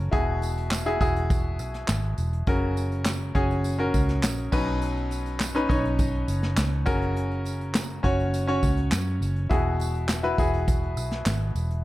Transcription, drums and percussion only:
0.13 kick, closed hi-hat
0.42 closed hi-hat, tambourine
0.57 closed hi-hat
0.71 snare, clap, tambourine
0.86 closed hi-hat
1.01 kick, closed hi-hat, tambourine
1.16 closed hi-hat
1.30 kick, closed hi-hat, tambourine
1.59 closed hi-hat, tambourine
1.74 snare, closed hi-hat
1.88 snare, clap, tambourine
2.03 closed hi-hat
2.18 closed hi-hat, tambourine
2.33 closed hi-hat
2.47 kick, closed hi-hat
2.76 closed hi-hat, tambourine
2.91 closed hi-hat
3.05 snare, clap, tambourine
3.35 kick, closed hi-hat
3.51 closed hi-hat
3.64 closed hi-hat, tambourine
3.94 kick, closed hi-hat, tambourine
4.08 snare, closed hi-hat
4.23 snare, clap, tambourine
4.37 closed hi-hat
4.52 kick, tambourine, crash
4.67 closed hi-hat
4.81 closed hi-hat
4.96 closed hi-hat
5.11 closed hi-hat, tambourine
5.26 closed hi-hat
5.40 snare, clap, tambourine
5.70 kick, closed hi-hat, tambourine
5.85 closed hi-hat
5.99 kick, closed hi-hat, tambourine
6.14 closed hi-hat
6.28 closed hi-hat, tambourine
6.42 snare, closed hi-hat
6.57 snare, clap, tambourine
6.72 closed hi-hat
6.86 kick, closed hi-hat, tambourine
7.02 closed hi-hat
7.16 closed hi-hat
7.31 closed hi-hat
7.45 closed hi-hat, tambourine
7.61 closed hi-hat
7.75 snare, clap, tambourine
8.04 kick, closed hi-hat
8.20 closed hi-hat
8.34 closed hi-hat, tambourine
8.63 kick, closed hi-hat, tambourine
8.77 closed hi-hat
8.92 snare, clap, tambourine
9.22 closed hi-hat, tambourine
9.36 closed hi-hat
9.51 kick, closed hi-hat
9.79 closed hi-hat, tambourine
9.95 closed hi-hat
10.09 snare, clap, tambourine
10.24 closed hi-hat
10.38 kick, closed hi-hat, tambourine
10.53 closed hi-hat
10.68 kick, closed hi-hat, tambourine
10.83 closed hi-hat
10.97 closed hi-hat, tambourine
11.11 snare, closed hi-hat
11.26 snare, clap, tambourine
11.41 closed hi-hat
11.55 closed hi-hat, tambourine
11.70 closed hi-hat

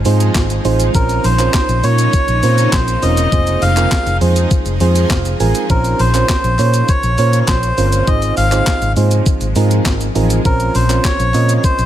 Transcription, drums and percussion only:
0.05 open hi-hat, shaker
0.20 closed hi-hat, shaker
0.35 kick, snare, clap, shaker
0.50 closed hi-hat, shaker
0.65 open hi-hat, shaker
0.80 closed hi-hat, shaker
0.95 kick, shaker
1.09 closed hi-hat, shaker
1.24 open hi-hat, shaker
1.39 clap, closed hi-hat, shaker
1.54 kick, snare, clap, shaker
1.69 closed hi-hat, shaker
1.84 open hi-hat, shaker
1.98 closed hi-hat, shaker
2.13 kick, shaker
2.28 closed hi-hat, shaker
2.43 open hi-hat, shaker
2.58 closed hi-hat, shaker
2.73 kick, snare, clap, shaker
2.88 closed hi-hat, shaker
3.03 open hi-hat, shaker
3.17 closed hi-hat, shaker
3.32 kick, shaker
3.47 closed hi-hat, shaker
3.62 open hi-hat, shaker
3.77 clap, closed hi-hat, shaker
3.92 kick, snare, clap, shaker
4.07 closed hi-hat, shaker
4.21 open hi-hat, shaker
4.36 closed hi-hat, shaker
4.51 kick, shaker
4.66 closed hi-hat, shaker
4.80 open hi-hat, shaker
4.96 closed hi-hat, shaker
5.10 kick, snare, clap, shaker
5.25 closed hi-hat, shaker
5.40 open hi-hat, shaker
5.55 closed hi-hat, shaker
5.70 kick, shaker
5.85 closed hi-hat, shaker
5.99 open hi-hat, shaker
6.14 clap, closed hi-hat, shaker
6.29 kick, snare, clap, shaker
6.44 closed hi-hat, shaker
6.59 clap, open hi-hat, shaker
6.74 closed hi-hat, shaker
6.89 kick, shaker
7.03 closed hi-hat, shaker
7.18 open hi-hat, shaker
7.33 closed hi-hat, shaker
7.48 kick, snare, clap, shaker
7.63 closed hi-hat, shaker
7.78 open hi-hat, shaker
7.92 closed hi-hat, shaker
8.07 kick, shaker
8.22 closed hi-hat, shaker
8.37 open hi-hat, shaker
8.52 clap, closed hi-hat, shaker
8.67 kick, snare, clap, shaker
8.82 closed hi-hat, shaker
8.96 open hi-hat, shaker
9.11 closed hi-hat, shaker
9.26 kick, shaker
9.41 closed hi-hat, shaker
9.56 open hi-hat, shaker
9.71 closed hi-hat, shaker
9.85 kick, snare, clap, shaker
10.01 closed hi-hat, shaker
10.15 open hi-hat, shaker
10.30 closed hi-hat, shaker
10.45 kick, shaker
10.60 closed hi-hat, shaker
10.75 open hi-hat, shaker
10.90 clap, closed hi-hat, shaker
11.04 kick, snare, clap, shaker
11.20 closed hi-hat, shaker
11.34 clap, open hi-hat, shaker
11.49 closed hi-hat, shaker
11.64 kick, shaker
11.79 closed hi-hat, shaker

